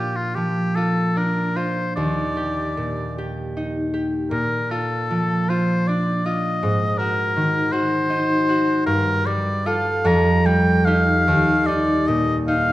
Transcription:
Already playing: A#2 F3 D4 F4 G4
0.16 F4
0.35 F3 G4
0.76 F4 A4
1.17 D4 A#4
1.56 F4 C5
1.96 D#2 D5
2.37 G4
2.77 A#2
3.18 G4
3.57 D#4
3.94 G4
4.31 A#2 A#4
4.71 F4 A4
5.11 F3
5.49 F4 C5
5.87 D4 D5
6.25 F4 D#5
6.63 G#2
6.98 F#4 A#4
7.36 D#3
7.72 F#4 C5
8.10 D#4
8.49 F#4
8.86 G2 A#4
9.26 G3 D5
9.66 F4 A4 F5
10.05 F2 A#5
10.46 G3 G5
10.85 D#4 G4 F5
11.28 D#2
11.66 D#4 D5
12.07 A#2 D#5
12.48 D#4 F5

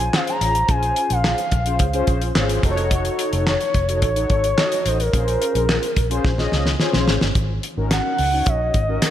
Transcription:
Already playing: G#5
0.00 closed hi-hat
0.13 C#4 F4 G#4 C5 F5, snare, clap
0.27 A#5, closed hi-hat
0.41 A1, closed hi-hat
0.55 closed hi-hat
0.69 A#1 C#4 F4 G#4 C5 G#5, kick, closed hi-hat
0.83 closed hi-hat
0.96 closed hi-hat
1.10 A#1 F5, closed hi-hat
1.24 snare, clap
1.38 closed hi-hat
1.52 A#1, kick, closed hi-hat
1.66 C#4 F4 G#4 C5, closed hi-hat
1.79 C#2, kick, closed hi-hat
1.94 C#4 F4 G#4 C5, closed hi-hat
2.07 A#1, kick, closed hi-hat
2.22 closed hi-hat
2.35 G#1 C#4 F4 G#4 C5, snare, clap
2.49 closed hi-hat
2.63 F1 D#4 F#4 A4 C5, kick, closed hi-hat
2.71 C#5
2.77 closed hi-hat
2.91 kick, closed hi-hat
3.05 closed hi-hat
3.19 closed hi-hat
3.33 F1, closed hi-hat
3.47 C#5, snare, clap
3.61 closed hi-hat
3.74 F1, kick, closed hi-hat
3.88 D#4 F#4 A4 C#5, closed hi-hat
4.02 A1 C#5, kick, closed hi-hat
4.16 D#4 F#4 A4 C#5, closed hi-hat
4.30 G#1, kick, closed hi-hat
4.44 closed hi-hat
4.57 D#4 F#4 A4 D#5, snare, clap
4.72 closed hi-hat
4.86 A1 C5, closed hi-hat
5.00 A#4, closed hi-hat
5.13 A#1 C#4 F4 G#4 C5, kick, closed hi-hat
5.28 closed hi-hat
5.42 closed hi-hat
5.55 A#1, closed hi-hat
5.69 snare, clap
5.83 closed hi-hat
5.96 A#1, kick, closed hi-hat
6.10 C#4 F4 G#4 C5, closed hi-hat
6.24 A#1, kick, snare
6.38 C#4 F4 G#4 D#5, snare
6.52 C#2, snare
6.66 snare
6.79 C#4 F4 G#4 C5, snare
6.93 A#1, snare
7.08 G#1, snare
7.21 G1, snare
7.35 G#1, kick, closed hi-hat
7.63 closed hi-hat
7.77 G#1 C#4 D#4 F#4 A#4
7.91 F#5, snare, clap, closed hi-hat
8.18 C#2, open hi-hat
8.32 C#4 D#4 F#4 C#5
8.46 A#1 D#5, kick, closed hi-hat
8.74 G#1, kick, closed hi-hat
8.88 C#4 D#4 F#4 A#4
9.02 snare, clap, closed hi-hat

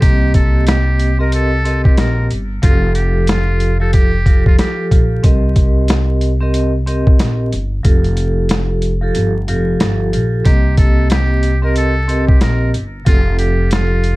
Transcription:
0.01 C2 A#3 C4 G4 D#5, kick, closed hi-hat
0.34 A4, kick, closed hi-hat
0.67 G4, snare, closed hi-hat
0.99 closed hi-hat
1.19 C4 G4 A#4 D#5
1.32 A4, closed hi-hat
1.65 C4 G4 A#4 D#5, closed hi-hat
1.84 G4, kick
1.97 A#1 A#4, snare, closed hi-hat
2.31 G1, closed hi-hat
2.62 F1 F3 F4 G4 A4, kick, closed hi-hat
2.95 G4, closed hi-hat
3.27 F4, snare, closed hi-hat
3.60 closed hi-hat
3.80 F3 F4 G4 A4
3.93 G4, kick, closed hi-hat
4.26 F3 F4 G4 A4, kick, closed hi-hat
4.46 F4, kick
4.59 F3 F4 G4 A4, snare, closed hi-hat
4.91 A#1 F3 F4 G4 A4, kick, closed hi-hat
5.23 C2 C4 G4 A#4 D#5, kick, closed hi-hat
5.56 kick, closed hi-hat
5.88 snare, closed hi-hat
6.21 closed hi-hat
6.41 C4 G4 A#4 D#5
6.54 closed hi-hat
6.86 C4 G4 A#4 D#5, closed hi-hat
7.07 kick
7.19 A#1, snare, closed hi-hat
7.53 G1, closed hi-hat
7.84 F1 F3 F4 G4 A4, kick, closed hi-hat
8.04 closed hi-hat
8.17 closed hi-hat
8.49 snare, closed hi-hat
8.82 closed hi-hat
9.01 F3 F4 G4 A4
9.15 G1, closed hi-hat
9.48 F1 F3 F4 G4 A4, closed hi-hat
9.80 G1 F3 F4 G4 A4, snare, closed hi-hat
10.13 A#1 F3 F4 G4 A4, closed hi-hat
10.44 C2 A#3 C4 G4 D#5, kick, closed hi-hat
10.77 A4, kick, closed hi-hat
11.10 G4, snare, closed hi-hat
11.43 closed hi-hat
11.62 C4 G4 A#4 D#5
11.76 A4, closed hi-hat
12.08 C4 G4 A#4 D#5, closed hi-hat
12.27 G4, kick
12.41 A#1 A#4, snare, closed hi-hat
12.74 G1, closed hi-hat
13.05 F1 F3 F4 G4 A4, kick, closed hi-hat
13.39 G4, closed hi-hat
13.71 F4, snare, closed hi-hat
14.04 closed hi-hat

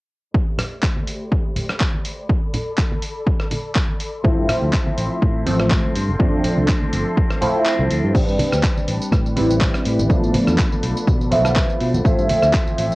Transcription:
0.34 D5, kick
0.58 cross-stick, open hi-hat, low conga, maracas
0.83 kick, clap
0.96 high conga, maracas
1.07 open hi-hat, maracas
1.20 maracas
1.32 kick
1.56 open hi-hat, high conga, low conga, maracas
1.69 cross-stick, maracas
1.80 kick, clap
1.94 high conga, maracas
2.05 open hi-hat, maracas
2.18 maracas
2.29 A4, kick
2.54 open hi-hat, low conga, maracas
2.67 maracas
2.78 kick, clap
2.91 high conga, maracas
3.02 open hi-hat, maracas
3.27 kick
3.40 cross-stick
3.51 open hi-hat, high conga, low conga, maracas
3.65 maracas
3.75 kick, clap
3.88 high conga, maracas
4.00 open hi-hat, maracas
4.13 maracas
4.24 A1 F3 A3 C4 E4 A4 E5 C6, kick
4.38 G2
4.48 F3 C4 E4 A4, cross-stick, open hi-hat, low conga, maracas
4.61 D2 C4 E4 A4
4.73 C4 E4 A4, kick, clap
4.86 high conga, maracas
4.97 A1 F3 C4 E4 A4, open hi-hat, maracas
5.10 C4 E4 A4, maracas
5.21 A2 F3 C4 E4 A4, kick
5.34 C4 E4 A4
5.46 A1 F3 A3 C4, open hi-hat, high conga, low conga, maracas
5.59 C4 E4 A4, cross-stick
5.70 F3 C4 E4 A4, kick, clap
5.83 high conga, maracas
5.94 G2 F3 C4 D4 A4, open hi-hat, maracas
6.08 G1
6.19 G1 F3 A3 C4 D4 A4, kick
6.33 F2
6.43 F3 C4 D4 A4, open hi-hat, low conga, maracas
6.56 C2 C4 D4 A4, high conga, maracas
6.68 F3 C4 D4 A4, kick, clap, maracas
6.81 high conga, maracas
6.92 G1 F3 C4 D4 A4, open hi-hat, maracas
7.05 C4 D4 A4
7.16 F3 C4 D4 A4, kick
7.29 C4 D4 A4, cross-stick
7.41 F3 A3 C4 E4, open hi-hat, high conga, low conga, maracas
7.54 C4 D4 A4, maracas
7.66 F3 C4 D4 A4, clap, maracas
7.79 C2, high conga, maracas
7.90 D2 F3 C4 D4 A4, open hi-hat, maracas
8.03 G2, maracas
8.14 A1 G3 C4 D4 B4 G5, kick, crash, tambourine
8.28 G2, tambourine
8.38 C4 D4 G4 B4, open hi-hat, high conga, low conga, maracas
8.51 D2 D4 G4 B4, cross-stick, tambourine
8.63 C4 D4 B4, kick, clap, tambourine
8.76 D4 G4 B4, tambourine, high conga, maracas
8.87 A1 C4 D4 G4 B4, open hi-hat
9.00 D4 G4 B4, tambourine
9.12 A2, kick, cross-stick, tambourine, high conga, maracas
9.26 tambourine
9.36 A1 G3 C4 D4 E4 G4 B4, open hi-hat, low conga, maracas
9.49 D4 G4 B4, tambourine, high conga, maracas
9.60 C4 D4 G4 B4, kick, clap, tambourine
9.74 cross-stick, tambourine
9.85 A2 C4 D4 G4 B4, open hi-hat
9.98 A1, tambourine, high conga, maracas
10.09 F3 A3 B3 D4 F4 A4 B4 B5, kick, tambourine
10.23 A2, tambourine
10.33 A3 D4 F4 B4, open hi-hat, high conga, low conga, maracas
10.47 E2 D4 F4 B4, cross-stick, tambourine
10.58 B4, kick, clap, tambourine
10.71 D4 F4 B4, tambourine, high conga, maracas
10.82 B1 A3 D4 F4 B4, open hi-hat, maracas
10.95 D4 F4 B4, tambourine
11.07 B2, kick, tambourine, high conga, maracas
11.21 tambourine
11.31 B1 F3 A3 B3 D4 F4 B4 E5, open hi-hat, low conga, maracas
11.44 D4 F4 B4, cross-stick, tambourine, high conga, maracas
11.56 kick, clap, tambourine
11.69 D4 F4 B4, tambourine
11.80 B2 A3 D4 F4 B4, open hi-hat
11.93 B1, tambourine, high conga, maracas
12.04 A1 F3 A3 C4 E4 F4 C5 E5, kick, tambourine
12.18 G2, tambourine
12.29 A3 E4 F4 C5, open hi-hat, high conga, low conga, maracas
12.42 D2 E4 F4 C5, cross-stick, tambourine
12.53 E4 F4 C5, kick, clap, tambourine
12.66 E4 F4 C5, tambourine, high conga, maracas
12.77 A1 A3 E4 F4 C5, open hi-hat
12.90 F4 C5, tambourine

